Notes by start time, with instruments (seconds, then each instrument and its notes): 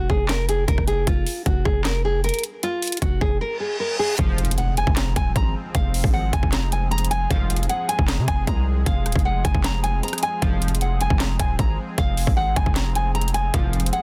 0.10 808-style bass F1, nylon-string guitar G#4, kick
0.28 nylon-string guitar A#4, snare, clap, closed hi-hat
0.49 nylon-string guitar G#4, closed hi-hat
0.68 808-style bass F1, nylon-string guitar A#4, kick, closed hi-hat
0.78 808-style bass F1, kick, cross-stick
0.87 nylon-string guitar G#4, closed hi-hat
1.07 808-style bass F1, nylon-string guitar F4, kick, closed hi-hat
1.27 open hi-hat
1.46 808-style bass F1, nylon-string guitar F#4, kick, closed hi-hat
1.65 808-style bass F1, nylon-string guitar G#4, kick
1.84 nylon-string guitar A#4, snare, clap, closed hi-hat
2.05 nylon-string guitar G#4
2.24 nylon-string guitar A#4, closed hi-hat
2.29 closed hi-hat
2.34 closed hi-hat
2.39 closed hi-hat
2.43 closed hi-hat
2.63 nylon-string guitar F4, closed hi-hat
2.82 closed hi-hat, open hi-hat
2.87 closed hi-hat
2.92 closed hi-hat
2.97 closed hi-hat
3.02 808-style bass F1, nylon-string guitar F#4, kick, closed hi-hat
3.21 808-style bass F1, nylon-string guitar G#4, kick
3.41 nylon-string guitar A#4, reverse cymbal
3.60 nylon-string guitar G#4
3.80 nylon-string guitar A#4
3.99 nylon-string guitar G#4
4.18 808-style bass F1, analog polysynth C2 G#2 F3, analog synth pad F3 G#3 C4 G#4, nylon-string guitar F5, kick, closed hi-hat, impact
4.38 closed hi-hat
4.45 closed hi-hat
4.51 closed hi-hat
4.58 nylon-string guitar F#5, closed hi-hat
4.77 nylon-string guitar G#5, closed hi-hat
4.87 808-style bass F1, kick
4.96 nylon-string guitar A#5, snare, clap, closed hi-hat
5.16 808-style bass D#1, nylon-string guitar G#5, kick, closed hi-hat
5.36 808-style bass G#1, nylon-string guitar A#5, kick, closed hi-hat
5.75 808-style bass F1, nylon-string guitar F5, kick, closed hi-hat
5.94 open hi-hat
6.04 808-style bass G#1, kick
6.13 nylon-string guitar F#5
6.33 808-style bass F1, nylon-string guitar G#5, kick, closed hi-hat
6.43 808-style bass F1, kick
6.52 nylon-string guitar A#5, snare, clap, closed hi-hat
6.72 nylon-string guitar G#5, closed hi-hat
6.91 nylon-string guitar A#5, closed hi-hat
6.98 closed hi-hat
7.05 closed hi-hat
7.11 nylon-string guitar G#5, closed hi-hat
7.30 808-style bass F1, analog polysynth C2 G#2 F3, analog synth pad F3 C4, nylon-string guitar F5, kick, closed hi-hat
7.50 closed hi-hat
7.56 closed hi-hat
7.63 closed hi-hat
7.69 nylon-string guitar F#5, closed hi-hat
7.89 nylon-string guitar G#5, closed hi-hat
7.99 808-style bass F1, kick
8.08 nylon-string guitar A#5, snare, clap, closed hi-hat
8.18 808-style bass C3
8.28 808-style bass F1, nylon-string guitar G#5, kick, closed hi-hat
8.47 808-style bass C2, nylon-string guitar A#5, kick, closed hi-hat
8.86 808-style bass F1, nylon-string guitar F5, kick, closed hi-hat
9.06 808-style bass D#1, cross-stick, closed hi-hat
9.12 808-style bass F1, kick, closed hi-hat
9.19 closed hi-hat
9.25 nylon-string guitar F#5
9.44 808-style bass F1, nylon-string guitar G#5, kick, closed hi-hat
9.55 808-style bass F1, kick
9.64 nylon-string guitar A#5, snare, clap, closed hi-hat
9.83 nylon-string guitar G#5, closed hi-hat
10.03 nylon-string guitar A#5, closed hi-hat
10.08 closed hi-hat
10.13 cross-stick, closed hi-hat
10.18 closed hi-hat
10.23 nylon-string guitar G#5, closed hi-hat
10.42 808-style bass F1, analog polysynth C2 G#2 F3, nylon-string guitar F5, kick, closed hi-hat
10.62 closed hi-hat
10.68 closed hi-hat
10.75 closed hi-hat
10.81 nylon-string guitar F#5, closed hi-hat
11.01 nylon-string guitar G#5, closed hi-hat
11.10 808-style bass F1, kick
11.19 nylon-string guitar A#5, snare, clap, closed hi-hat
11.40 808-style bass D#1, nylon-string guitar G#5, kick, closed hi-hat
11.59 808-style bass G#1, nylon-string guitar A#5, kick, closed hi-hat
11.98 808-style bass F1, nylon-string guitar F5, kick, closed hi-hat
12.17 open hi-hat
12.27 808-style bass G#1, kick
12.37 nylon-string guitar F#5
12.56 808-style bass F1, nylon-string guitar G#5, kick, closed hi-hat
12.66 808-style bass F1, kick
12.75 nylon-string guitar A#5, snare, clap, closed hi-hat
12.95 nylon-string guitar G#5, closed hi-hat
13.15 nylon-string guitar A#5, closed hi-hat
13.21 closed hi-hat
13.28 closed hi-hat
13.34 nylon-string guitar G#5, closed hi-hat
13.54 808-style bass F1, analog polysynth C2 G#2 F3, analog synth pad F3 G#3 G#4, nylon-string guitar F5, kick, closed hi-hat
13.73 closed hi-hat
13.80 closed hi-hat
13.86 closed hi-hat
13.93 nylon-string guitar F#5, closed hi-hat